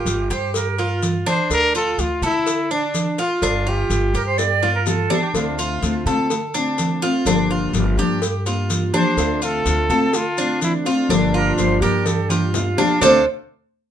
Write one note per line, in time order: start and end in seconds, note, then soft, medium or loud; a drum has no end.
0.00 0.29 F4 medium
0.00 0.32 G4 loud
0.05 0.29 G1 loud
0.05 cowbell medium
0.05 high conga medium
0.05 maracas medium
0.30 1.22 G2 medium
0.30 0.77 G4 medium
0.30 0.55 C5 loud
0.30 cowbell medium
0.30 high conga soft
0.30 maracas soft
0.54 1.11 A#4 medium
0.54 cowbell loud
0.54 high conga soft
0.54 maracas medium
0.78 1.25 F4 medium
0.78 cowbell medium
0.78 high conga soft
1.02 cowbell medium
1.02 high conga medium
1.02 maracas medium
1.26 1.73 D4 loud
1.26 1.50 C5 medium
1.26 cowbell medium
1.26 high conga medium
1.26 maracas soft
1.50 1.96 D2 medium
1.50 1.74 A#4 loud
1.50 cowbell loud
1.50 high conga soft
1.50 maracas medium
1.75 2.21 F4 medium
1.75 2.02 A4 loud
1.75 high conga soft
1.75 maracas medium
1.98 2.21 D2 loud
1.98 2.23 F4 medium
1.98 cowbell medium
1.98 high conga medium
1.98 maracas medium
2.22 3.14 D3 loud
2.22 2.69 E4 loud
2.22 2.69 A4 medium
2.22 cowbell medium
2.22 high conga soft
2.22 low conga medium
2.22 maracas soft
2.46 cowbell loud
2.46 high conga soft
2.46 maracas medium
2.71 3.17 D4 medium
2.71 high conga soft
2.94 cowbell medium
2.94 high conga medium
2.94 maracas medium
3.18 3.42 F4 medium
3.18 3.70 F4 medium
3.18 cowbell medium
3.18 high conga soft
3.18 maracas soft
3.42 3.88 G1 loud
3.42 3.66 D4 medium
3.42 cowbell loud
3.42 high conga soft
3.42 maracas medium
3.66 4.13 F4 medium
3.66 4.64 G4 loud
3.66 high conga soft
3.90 4.13 G1 loud
3.90 cowbell medium
3.90 high conga medium
3.90 maracas medium
4.14 5.06 G2 loud
4.14 4.61 G4 medium
4.14 4.25 A#4 loud
4.14 cowbell medium
4.14 high conga soft
4.14 maracas soft
4.26 4.39 C5 loud
4.38 4.74 D5 loud
4.38 cowbell loud
4.38 high bongo medium
4.38 high conga soft
4.38 maracas medium
4.63 5.09 F4 medium
4.63 cowbell medium
4.63 high bongo medium
4.63 high conga soft
4.75 4.88 A#4 medium
4.86 5.24 A4 loud
4.86 cowbell medium
4.86 low bongo medium
4.86 high conga medium
4.86 maracas medium
5.10 5.57 D4 medium
5.10 cowbell medium
5.10 low bongo loud
5.10 high conga medium
5.10 maracas soft
5.22 5.34 G4 medium
5.34 5.80 D2 medium
5.34 5.81 D3 medium
5.34 5.82 A3 medium
5.34 5.82 C4 medium
5.34 6.27 F4 medium
5.34 5.83 F4 medium
5.34 cowbell loud
5.34 high conga soft
5.34 maracas medium
5.59 6.05 F4 medium
5.59 high conga soft
5.59 maracas medium
5.82 6.05 D2 loud
5.82 6.05 D3 medium
5.82 6.06 A3 medium
5.82 6.06 C4 medium
5.82 6.06 F4 medium
5.82 cowbell medium
5.82 high conga medium
5.82 maracas medium
6.06 6.98 D3 loud
6.06 6.30 A3 medium
6.06 6.30 C4 medium
6.06 6.30 F4 medium
6.06 6.53 A4 medium
6.06 cowbell medium
6.06 high conga soft
6.06 low conga medium
6.06 maracas soft
6.30 muted steel-string acoustic guitar stroke medium
6.30 cowbell loud
6.30 high conga soft
6.30 maracas medium
6.54 7.03 A3 soft
6.54 7.02 C4 soft
6.54 7.01 D4 medium
6.54 7.02 F4 medium
6.54 high conga soft
6.54 maracas medium
6.78 cowbell medium
6.78 high conga medium
6.78 maracas medium
7.02 7.27 A3 medium
7.02 7.26 C4 medium
7.02 7.26 F4 medium
7.02 cowbell medium
7.02 high conga soft
7.02 maracas soft
7.25 7.71 G1 medium
7.25 7.73 D3 medium
7.25 7.72 F3 medium
7.25 7.73 A#3 medium
7.25 7.50 D4 medium
7.25 7.74 D4 medium
7.25 7.74 G4 medium
7.25 cowbell loud
7.25 high conga soft
7.25 maracas medium
7.51 7.97 F4 medium
7.51 high conga soft
7.73 7.97 G1 loud
7.73 7.97 F3 soft
7.73 7.97 A#3 medium
7.73 7.97 D4 medium
7.73 7.96 G4 medium
7.73 cowbell medium
7.73 high conga medium
7.73 maracas medium
7.97 8.90 G2 loud
7.97 8.21 F3 medium
7.97 8.21 A#3 medium
7.97 8.21 D4 medium
7.97 8.21 G4 medium
7.97 8.45 G4 medium
7.97 cowbell medium
7.97 high conga soft
7.97 maracas soft
8.22 muted steel-string acoustic guitar stroke medium
8.22 cowbell loud
8.22 high conga soft
8.22 maracas medium
8.46 8.94 A#3 soft
8.46 8.93 D4 soft
8.46 8.93 F4 medium
8.46 8.92 G4 soft
8.46 cowbell medium
8.46 high conga soft
8.46 maracas medium
8.70 cowbell medium
8.70 high conga medium
8.70 maracas medium
8.93 9.17 F3 medium
8.93 9.18 A#3 medium
8.93 9.41 D4 medium
8.93 9.17 D4 medium
8.93 9.17 G4 medium
8.93 9.40 C5 loud
8.93 cowbell medium
8.93 high conga medium
8.93 maracas soft
9.17 9.63 D2 loud
9.17 9.64 D3 medium
9.17 9.65 A3 medium
9.17 9.65 C4 medium
9.17 9.66 F4 medium
9.17 cowbell loud
9.17 maracas medium
9.42 9.89 F4 medium
9.42 10.17 A4 loud
9.42 high conga soft
9.42 maracas medium
9.65 9.88 D2 loud
9.65 9.89 D3 medium
9.65 9.89 A3 soft
9.65 9.90 C4 medium
9.65 9.89 F4 medium
9.65 cowbell medium
9.65 high conga medium
9.65 maracas medium
9.89 10.82 D3 medium
9.89 10.14 A3 medium
9.89 10.14 C4 medium
9.89 10.13 F4 medium
9.89 10.37 A4 medium
9.89 cowbell medium
9.89 high conga soft
9.89 low conga medium
9.89 maracas soft
10.13 10.62 F4 loud
10.13 muted steel-string acoustic guitar stroke medium
10.13 cowbell loud
10.13 high conga soft
10.13 maracas medium
10.37 10.86 A3 soft
10.37 10.86 C4 soft
10.37 10.85 D4 medium
10.37 10.84 F4 medium
10.37 high conga soft
10.37 maracas medium
10.62 10.73 E4 medium
10.62 cowbell medium
10.62 high conga medium
10.62 maracas medium
10.85 11.10 A3 medium
10.85 11.09 C4 medium
10.85 12.50 D4 medium
10.85 11.09 F4 medium
10.85 cowbell medium
10.85 maracas soft
11.09 11.55 G1 loud
11.09 11.57 D3 medium
11.09 11.56 F3 medium
11.09 11.57 A#3 medium
11.09 11.33 D4 medium
11.09 11.58 D4 medium
11.09 11.58 G4 medium
11.09 cowbell loud
11.09 high conga soft
11.09 maracas medium
11.33 11.81 F4 medium
11.33 11.56 A#4 loud
11.33 high conga soft
11.57 11.80 G1 medium
11.57 11.80 F3 medium
11.57 11.81 A#3 soft
11.57 11.80 D4 medium
11.57 11.80 G4 medium
11.57 11.80 C5 loud
11.57 cowbell medium
11.57 high conga medium
11.57 maracas medium
11.81 12.74 G2 medium
11.81 12.04 F3 medium
11.81 12.05 A#3 medium
11.81 12.05 D4 medium
11.81 12.04 G4 medium
11.81 12.29 G4 medium
11.81 12.07 A#4 loud
11.81 cowbell medium
11.81 high conga soft
11.81 maracas soft
12.05 12.31 A4 medium
12.05 muted steel-string acoustic guitar stroke medium
12.05 cowbell loud
12.05 high conga medium
12.05 maracas medium
12.29 12.77 A#3 soft
12.29 12.77 D4 soft
12.29 12.77 F4 medium
12.29 12.76 G4 soft
12.29 12.54 G4 medium
12.29 cowbell medium
12.29 high conga loud
12.29 maracas medium
12.54 12.99 F4 medium
12.54 cowbell medium
12.54 high bongo loud
12.54 low conga medium
12.54 maracas medium
12.77 13.00 F3 medium
12.77 13.01 A#3 medium
12.77 13.01 D4 medium
12.77 13.00 D4 loud
12.77 13.00 G4 medium
12.77 cowbell medium
12.77 low bongo loud
12.77 low conga medium
12.77 maracas soft
13.01 13.24 D2 medium
13.01 13.20 D3 medium
13.01 13.21 A3 medium
13.01 13.21 C4 medium
13.01 13.24 D4 medium
13.01 13.24 F4 medium
13.01 13.21 F4 medium
13.01 13.24 A4 medium
13.01 13.25 C5 loud
13.01 low bongo loud
13.01 low conga loud
13.01 maracas loud